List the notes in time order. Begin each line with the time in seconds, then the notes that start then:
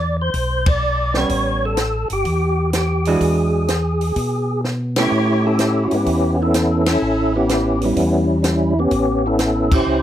Already playing: E2 D5
0.21 C5
0.34 B1, kick, open hi-hat
0.66 D5, kick, ride
1.14 G3 B3 C#4 C#5, snare
1.29 A1, kick, open hi-hat
1.65 A4
1.77 snare, closed hi-hat
2.10 G1 G4, open hi-hat
2.25 E2, kick, open hi-hat
2.73 G4, snare, closed hi-hat
3.05 E3 G#3 D4 F#4 G#4, open hi-hat
3.21 E2, kick, open hi-hat
3.68 snare, closed hi-hat
4.01 open hi-hat
4.16 B2, kick, open hi-hat
4.64 snare
4.96 A3 C#4 E4 G4 B4 C#5, snare, ride
5.12 A2
5.46 C#4 E4 A4
5.59 snare, closed hi-hat
5.84 F#4
5.91 G#2 B3 C#4 G4, open hi-hat
6.06 E2, kick, open hi-hat
6.42 C#4 E4 A4
6.54 snare, closed hi-hat
6.86 C#4 E4, snare, ride
6.90 A4
7.02 A1
7.36 B3 C#4 G4
7.49 snare, closed hi-hat
7.81 G3 C#4 E4, open hi-hat
7.97 E2, kick, open hi-hat
8.43 D#4, snare, closed hi-hat
8.49 E4
8.79 B3 C#4 G4
8.91 A1, kick, open hi-hat
9.26 C#4 E4 A4
9.39 snare, closed hi-hat
9.71 E4 G4 C5, kick, crash
9.87 C#2